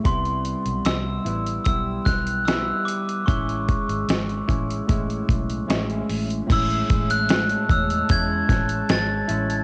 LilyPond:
<<
  \new Staff \with { instrumentName = "Glockenspiel" } { \time 4/4 \key a \major \tempo 4 = 75 c'''4 e'''4 e'''8 fis'''8 e'''8 d'''8 | cis'''2. r4 | e'''8. fis'''8. e'''8 gis'''4 a'''4 | }
  \new Staff \with { instrumentName = "Ambient pad" } { \time 4/4 \key a \major r1 | r1 | <gis cis'' a''>1 | }
  \new Staff \with { instrumentName = "Clean electric guitar" } { \time 4/4 \key a \major <c g b e'>4. <g b e'>8 <g b e'>4 <g b e'>4 | <gis cis' e'>4. <gis cis' e'>8 <a, gis cis' e'>4 <a, gis cis' e'>4 | <a, gis cis' e'>2 <gis cis' e'>4. <gis cis' e'>8 | }
  \new Staff \with { instrumentName = "Fingered electric bass" } { \clef bass \time 4/4 \key a \major c,8. b,,16 c,8 a,,8 b,,8 b,,4 r8 | a,,8. gis,,16 gis,,8 a,,8 a,,8 b,,8 a,,8 a,,8 | a,,8 a,,4 e,8 e,8 a,,8 gis,,8 a,,8 | }
  \new DrumStaff \with { instrumentName = "Drums" } \drummode { \time 4/4 <hh bd>16 hh16 hh16 hh16 <hh sn>8 hh16 hh16 <hh bd>8 <hh bd sn>16 hh16 <hh sn>8 hh16 hh16 | <hh bd>16 hh16 <hh bd>16 hh16 <hh sn>16 hh16 <hh bd>16 hh16 <hh bd>16 hh16 <hh bd>16 hh16 <hh sn>16 hh16 hho16 hh16 | <cymc hh bd>16 hh16 <hh bd>16 hh16 <hh sn>16 hh16 <hh bd>16 hh16 <hh bd>8 <hh bd sn>16 hh16 <hh sn>8 hh16 hh16 | }
>>